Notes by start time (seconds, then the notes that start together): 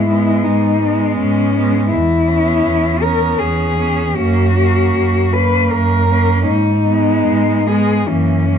Already playing: G#2 E4
0.10 G#3 B3
0.44 G#2 D#4
0.82 G#3 B3
1.18 G#2 C#4
1.56 G#3 B3
1.91 E2 E4
2.29 B3 C#4
2.66 E2
3.01 B3 C#4 A#4
3.39 E2 G#4
3.77 B3 C#4
4.16 F#2 A#3 C#4 F#4
4.55 A#3 C#4
4.96 F#2
5.33 A#3 C#4 B4
5.71 F#2 A#4
6.10 A#3 C#4
6.48 G#2 D#4
6.86 G#3 B3
7.27 G#2
7.66 G#3 B3 G#4
8.08 F#2 E3 A#3 C#4
8.52 E3 A#3